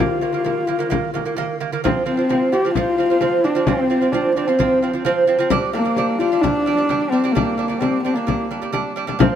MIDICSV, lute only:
0, 0, Header, 1, 2, 480
1, 0, Start_track
1, 0, Tempo, 459770
1, 1911, Time_signature, 4, 2, 24, 8
1, 9766, End_track
2, 0, Start_track
2, 0, Title_t, "Lute"
2, 0, Program_c, 0, 24
2, 0, Note_on_c, 0, 51, 92
2, 0, Note_on_c, 0, 58, 100
2, 180, Note_off_c, 0, 51, 0
2, 185, Note_off_c, 0, 58, 0
2, 222, Note_on_c, 0, 51, 68
2, 233, Note_on_c, 0, 58, 77
2, 324, Note_off_c, 0, 51, 0
2, 329, Note_off_c, 0, 58, 0
2, 340, Note_on_c, 0, 51, 67
2, 355, Note_on_c, 0, 58, 73
2, 443, Note_off_c, 0, 51, 0
2, 450, Note_off_c, 0, 58, 0
2, 464, Note_on_c, 0, 51, 80
2, 480, Note_on_c, 0, 58, 85
2, 660, Note_off_c, 0, 51, 0
2, 668, Note_off_c, 0, 58, 0
2, 702, Note_on_c, 0, 51, 86
2, 714, Note_on_c, 0, 58, 84
2, 803, Note_off_c, 0, 51, 0
2, 809, Note_off_c, 0, 58, 0
2, 822, Note_on_c, 0, 51, 84
2, 835, Note_on_c, 0, 58, 92
2, 923, Note_off_c, 0, 51, 0
2, 930, Note_off_c, 0, 58, 0
2, 939, Note_on_c, 0, 51, 104
2, 953, Note_on_c, 0, 58, 112
2, 1137, Note_off_c, 0, 51, 0
2, 1144, Note_off_c, 0, 58, 0
2, 1187, Note_on_c, 0, 51, 82
2, 1199, Note_on_c, 0, 58, 87
2, 1285, Note_off_c, 0, 51, 0
2, 1291, Note_off_c, 0, 58, 0
2, 1310, Note_on_c, 0, 51, 77
2, 1319, Note_on_c, 0, 58, 78
2, 1407, Note_off_c, 0, 51, 0
2, 1411, Note_off_c, 0, 58, 0
2, 1425, Note_on_c, 0, 51, 102
2, 1437, Note_on_c, 0, 58, 110
2, 1620, Note_off_c, 0, 51, 0
2, 1626, Note_off_c, 0, 58, 0
2, 1674, Note_on_c, 0, 51, 80
2, 1681, Note_on_c, 0, 58, 88
2, 1769, Note_off_c, 0, 51, 0
2, 1772, Note_off_c, 0, 58, 0
2, 1800, Note_on_c, 0, 51, 83
2, 1809, Note_on_c, 0, 58, 95
2, 1891, Note_off_c, 0, 51, 0
2, 1895, Note_off_c, 0, 58, 0
2, 1919, Note_on_c, 0, 53, 112
2, 1929, Note_on_c, 0, 60, 113
2, 2107, Note_off_c, 0, 53, 0
2, 2112, Note_off_c, 0, 60, 0
2, 2148, Note_on_c, 0, 53, 69
2, 2155, Note_on_c, 0, 60, 83
2, 2245, Note_off_c, 0, 53, 0
2, 2249, Note_off_c, 0, 60, 0
2, 2268, Note_on_c, 0, 53, 70
2, 2283, Note_on_c, 0, 60, 72
2, 2365, Note_off_c, 0, 53, 0
2, 2372, Note_off_c, 0, 60, 0
2, 2395, Note_on_c, 0, 53, 80
2, 2405, Note_on_c, 0, 60, 94
2, 2584, Note_off_c, 0, 53, 0
2, 2589, Note_off_c, 0, 60, 0
2, 2634, Note_on_c, 0, 53, 74
2, 2646, Note_on_c, 0, 60, 89
2, 2727, Note_off_c, 0, 53, 0
2, 2733, Note_off_c, 0, 60, 0
2, 2763, Note_on_c, 0, 53, 67
2, 2778, Note_on_c, 0, 60, 84
2, 2852, Note_off_c, 0, 53, 0
2, 2859, Note_off_c, 0, 60, 0
2, 2880, Note_on_c, 0, 53, 95
2, 2893, Note_on_c, 0, 60, 101
2, 3066, Note_off_c, 0, 53, 0
2, 3072, Note_off_c, 0, 60, 0
2, 3114, Note_on_c, 0, 53, 72
2, 3130, Note_on_c, 0, 60, 75
2, 3207, Note_off_c, 0, 53, 0
2, 3215, Note_off_c, 0, 60, 0
2, 3237, Note_on_c, 0, 53, 67
2, 3249, Note_on_c, 0, 60, 77
2, 3329, Note_off_c, 0, 53, 0
2, 3335, Note_off_c, 0, 60, 0
2, 3349, Note_on_c, 0, 53, 92
2, 3359, Note_on_c, 0, 60, 97
2, 3540, Note_off_c, 0, 53, 0
2, 3545, Note_off_c, 0, 60, 0
2, 3592, Note_on_c, 0, 53, 72
2, 3601, Note_on_c, 0, 60, 77
2, 3686, Note_off_c, 0, 53, 0
2, 3690, Note_off_c, 0, 60, 0
2, 3707, Note_on_c, 0, 53, 83
2, 3720, Note_on_c, 0, 60, 91
2, 3803, Note_off_c, 0, 53, 0
2, 3810, Note_off_c, 0, 60, 0
2, 3833, Note_on_c, 0, 53, 88
2, 3844, Note_on_c, 0, 60, 104
2, 4022, Note_off_c, 0, 53, 0
2, 4027, Note_off_c, 0, 60, 0
2, 4070, Note_on_c, 0, 53, 71
2, 4079, Note_on_c, 0, 60, 76
2, 4164, Note_off_c, 0, 53, 0
2, 4169, Note_off_c, 0, 60, 0
2, 4191, Note_on_c, 0, 53, 69
2, 4200, Note_on_c, 0, 60, 77
2, 4285, Note_off_c, 0, 53, 0
2, 4290, Note_off_c, 0, 60, 0
2, 4313, Note_on_c, 0, 53, 89
2, 4327, Note_on_c, 0, 60, 92
2, 4502, Note_off_c, 0, 53, 0
2, 4509, Note_off_c, 0, 60, 0
2, 4557, Note_on_c, 0, 53, 74
2, 4565, Note_on_c, 0, 60, 86
2, 4648, Note_off_c, 0, 53, 0
2, 4652, Note_off_c, 0, 60, 0
2, 4673, Note_on_c, 0, 53, 78
2, 4685, Note_on_c, 0, 60, 82
2, 4766, Note_off_c, 0, 53, 0
2, 4772, Note_off_c, 0, 60, 0
2, 4789, Note_on_c, 0, 53, 91
2, 4801, Note_on_c, 0, 60, 104
2, 4980, Note_off_c, 0, 53, 0
2, 4986, Note_off_c, 0, 60, 0
2, 5037, Note_on_c, 0, 53, 75
2, 5048, Note_on_c, 0, 60, 83
2, 5128, Note_off_c, 0, 53, 0
2, 5133, Note_off_c, 0, 60, 0
2, 5151, Note_on_c, 0, 53, 72
2, 5164, Note_on_c, 0, 60, 80
2, 5245, Note_off_c, 0, 53, 0
2, 5251, Note_off_c, 0, 60, 0
2, 5269, Note_on_c, 0, 53, 104
2, 5283, Note_on_c, 0, 60, 126
2, 5460, Note_off_c, 0, 53, 0
2, 5467, Note_off_c, 0, 60, 0
2, 5506, Note_on_c, 0, 53, 87
2, 5517, Note_on_c, 0, 60, 92
2, 5602, Note_off_c, 0, 53, 0
2, 5608, Note_off_c, 0, 60, 0
2, 5623, Note_on_c, 0, 53, 96
2, 5639, Note_on_c, 0, 60, 108
2, 5721, Note_off_c, 0, 53, 0
2, 5729, Note_off_c, 0, 60, 0
2, 5745, Note_on_c, 0, 55, 123
2, 5754, Note_on_c, 0, 62, 127
2, 5938, Note_off_c, 0, 55, 0
2, 5942, Note_off_c, 0, 62, 0
2, 5985, Note_on_c, 0, 55, 78
2, 6003, Note_on_c, 0, 62, 82
2, 6082, Note_off_c, 0, 55, 0
2, 6091, Note_off_c, 0, 62, 0
2, 6106, Note_on_c, 0, 55, 67
2, 6113, Note_on_c, 0, 62, 77
2, 6203, Note_off_c, 0, 55, 0
2, 6206, Note_off_c, 0, 62, 0
2, 6233, Note_on_c, 0, 55, 83
2, 6242, Note_on_c, 0, 62, 104
2, 6422, Note_off_c, 0, 55, 0
2, 6427, Note_off_c, 0, 62, 0
2, 6471, Note_on_c, 0, 55, 82
2, 6480, Note_on_c, 0, 62, 81
2, 6565, Note_off_c, 0, 55, 0
2, 6570, Note_off_c, 0, 62, 0
2, 6594, Note_on_c, 0, 55, 72
2, 6607, Note_on_c, 0, 62, 85
2, 6687, Note_off_c, 0, 55, 0
2, 6694, Note_off_c, 0, 62, 0
2, 6713, Note_on_c, 0, 55, 90
2, 6723, Note_on_c, 0, 62, 106
2, 6903, Note_off_c, 0, 55, 0
2, 6907, Note_off_c, 0, 62, 0
2, 6953, Note_on_c, 0, 55, 74
2, 6966, Note_on_c, 0, 62, 87
2, 7047, Note_off_c, 0, 55, 0
2, 7053, Note_off_c, 0, 62, 0
2, 7068, Note_on_c, 0, 55, 66
2, 7082, Note_on_c, 0, 62, 76
2, 7165, Note_off_c, 0, 55, 0
2, 7171, Note_off_c, 0, 62, 0
2, 7193, Note_on_c, 0, 55, 88
2, 7208, Note_on_c, 0, 62, 97
2, 7383, Note_off_c, 0, 55, 0
2, 7391, Note_off_c, 0, 62, 0
2, 7436, Note_on_c, 0, 55, 78
2, 7447, Note_on_c, 0, 62, 85
2, 7529, Note_off_c, 0, 55, 0
2, 7534, Note_off_c, 0, 62, 0
2, 7555, Note_on_c, 0, 55, 78
2, 7567, Note_on_c, 0, 62, 87
2, 7648, Note_off_c, 0, 55, 0
2, 7655, Note_off_c, 0, 62, 0
2, 7675, Note_on_c, 0, 55, 99
2, 7688, Note_on_c, 0, 62, 101
2, 7865, Note_off_c, 0, 55, 0
2, 7871, Note_off_c, 0, 62, 0
2, 7909, Note_on_c, 0, 55, 73
2, 7923, Note_on_c, 0, 62, 84
2, 8006, Note_off_c, 0, 55, 0
2, 8013, Note_off_c, 0, 62, 0
2, 8019, Note_on_c, 0, 55, 73
2, 8034, Note_on_c, 0, 62, 77
2, 8121, Note_off_c, 0, 55, 0
2, 8129, Note_off_c, 0, 62, 0
2, 8148, Note_on_c, 0, 55, 88
2, 8164, Note_on_c, 0, 62, 93
2, 8342, Note_off_c, 0, 55, 0
2, 8350, Note_off_c, 0, 62, 0
2, 8400, Note_on_c, 0, 55, 75
2, 8413, Note_on_c, 0, 62, 85
2, 8492, Note_off_c, 0, 55, 0
2, 8498, Note_off_c, 0, 62, 0
2, 8513, Note_on_c, 0, 55, 76
2, 8527, Note_on_c, 0, 62, 84
2, 8609, Note_off_c, 0, 55, 0
2, 8616, Note_off_c, 0, 62, 0
2, 8631, Note_on_c, 0, 55, 86
2, 8645, Note_on_c, 0, 62, 99
2, 8824, Note_off_c, 0, 55, 0
2, 8831, Note_off_c, 0, 62, 0
2, 8881, Note_on_c, 0, 55, 73
2, 8889, Note_on_c, 0, 62, 82
2, 8973, Note_off_c, 0, 55, 0
2, 8977, Note_off_c, 0, 62, 0
2, 8995, Note_on_c, 0, 55, 74
2, 9006, Note_on_c, 0, 62, 80
2, 9091, Note_off_c, 0, 55, 0
2, 9096, Note_off_c, 0, 62, 0
2, 9109, Note_on_c, 0, 55, 106
2, 9118, Note_on_c, 0, 62, 106
2, 9304, Note_off_c, 0, 55, 0
2, 9309, Note_off_c, 0, 62, 0
2, 9353, Note_on_c, 0, 55, 85
2, 9364, Note_on_c, 0, 62, 89
2, 9450, Note_off_c, 0, 55, 0
2, 9456, Note_off_c, 0, 62, 0
2, 9471, Note_on_c, 0, 55, 92
2, 9481, Note_on_c, 0, 62, 93
2, 9570, Note_off_c, 0, 55, 0
2, 9575, Note_off_c, 0, 62, 0
2, 9592, Note_on_c, 0, 53, 106
2, 9606, Note_on_c, 0, 60, 115
2, 9766, Note_off_c, 0, 53, 0
2, 9766, Note_off_c, 0, 60, 0
2, 9766, End_track
0, 0, End_of_file